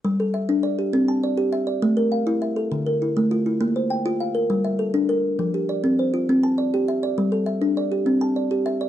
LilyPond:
\new Staff \with { instrumentName = "Kalimba" } { \time 12/8 \key g \dorian \tempo 4. = 135 << { r8 a'8 e''4 d''8 g'4 a''8 d''4 e''8 d''8~ | d''8 bes'8 f''4 e''8 a'4 bes'8 e'4 f'8 e'8~ | e'8 c''8 g''4 f''8 bes'4 e''8 a'4 bes'4~ | bes'8 g'8 d''4 c''8 f'4 a''8 d''4 e''8 d''8~ |
d''8 a'8 e''4 d''8 g'4 a''8 d''4 e''8 d''8 | } \\ { g4 r8 d'4 r8 c'4 r8 g'4 r8 | a4 r8 e'4 r8 d4 r8 a4 r8 | bes4 r8 f'4 r8 g4 r8 d'4 r8 | f4 r8 c'4 r8 c'4 r8 g'4 r8 |
g4 r8 d'4 r8 c'4 r8 g'4 r8 | } >> }